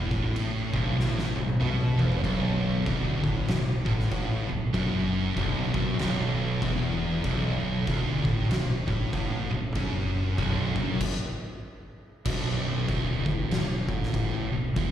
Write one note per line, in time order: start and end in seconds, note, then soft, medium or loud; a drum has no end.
0.11 0.70 A1 loud
0.11 0.72 A2 loud
0.11 kick loud
0.36 crash medium
0.73 0.97 B0 loud
0.73 0.97 B1 loud
0.73 kick loud
0.98 1.33 A1 loud
0.98 1.34 A2 loud
0.98 snare medium
1.19 snare medium
1.35 1.59 B0 medium
1.35 1.56 B1 medium
1.35 high tom medium
1.49 high tom medium
1.60 1.96 B1 loud
1.60 1.97 B2 loud
1.60 mid tom medium
1.81 mid tom medium
1.98 2.22 E1 loud
1.98 2.23 E2 loud
1.98 floor tom loud
2.12 floor tom loud
2.23 2.82 B0 loud
2.23 2.85 B1 loud
2.23 kick loud
2.23 crash medium
2.86 3.21 D1 loud
2.86 3.22 D2 loud
2.86 kick loud
2.86 crash medium
3.24 3.47 A1 loud
3.24 3.48 A2 loud
3.24 kick loud
3.48 3.83 B0 medium
3.48 3.79 B1 medium
3.48 snare loud
3.48 crash medium
3.86 4.10 A1 loud
3.86 4.11 A2 medium
3.86 kick loud
4.00 snare soft
4.11 4.46 A1 loud
4.11 4.48 A2 loud
4.11 kick loud
4.11 crash medium
4.48 4.73 B0 medium
4.48 4.69 B1 medium
4.74 5.33 F#1 loud
4.74 5.36 F#2 loud
4.74 kick loud
4.74 crash medium
5.37 5.72 B0 loud
5.37 5.73 B1 loud
5.37 kick loud
5.37 crash medium
5.74 5.98 F#1 loud
5.74 5.98 F#2 loud
5.74 kick loud
5.98 6.58 B0 loud
5.98 6.62 B1 loud
5.98 snare loud
5.98 crash medium
6.62 7.21 E1 loud
6.62 7.24 E2 loud
6.62 kick loud
6.62 crash medium
7.24 7.83 B0 loud
7.24 7.87 B1 loud
7.24 kick loud
7.24 crash medium
7.87 8.23 D1 loud
7.87 8.24 D2 loud
7.87 kick loud
7.87 crash medium
8.25 8.49 A1 loud
8.25 8.49 A2 loud
8.25 kick loud
8.50 8.85 B0 medium
8.50 8.80 B1 medium
8.50 snare loud
8.50 crash medium
8.88 9.11 A1 loud
8.88 9.12 A2 loud
8.88 kick loud
9.13 9.48 A1 loud
9.13 9.49 A2 loud
9.13 kick loud
9.13 crash medium
9.50 9.74 B0 medium
9.50 9.71 B1 medium
9.75 10.34 F#1 loud
9.75 10.38 F#2 loud
9.75 kick loud
9.75 crash medium
10.38 10.73 B0 loud
10.38 10.75 B1 loud
10.38 kick loud
10.38 crash medium
10.76 10.99 F#1 loud
10.76 11.00 F#2 loud
10.76 kick loud
11.01 kick loud
11.01 crash loud
12.25 12.84 B0 loud
12.25 12.88 B1 loud
12.25 kick loud
12.25 crash loud
12.25 crash medium
12.88 13.23 D1 loud
12.88 13.25 D2 loud
12.88 kick loud
12.88 crash medium
13.26 13.50 A1 loud
13.26 13.51 A2 loud
13.26 kick loud
13.51 13.86 B0 medium
13.51 13.81 B1 medium
13.51 snare loud
13.51 crash medium
13.89 14.12 A1 loud
13.89 14.13 A2 loud
13.89 kick loud
14.03 snare soft
14.14 14.49 A1 loud
14.14 14.50 A2 loud
14.14 kick loud
14.14 crash medium
14.51 14.74 B0 medium
14.51 14.71 B1 medium
14.76 14.91 E1 loud
14.76 14.91 E2 loud
14.76 kick loud
14.76 crash medium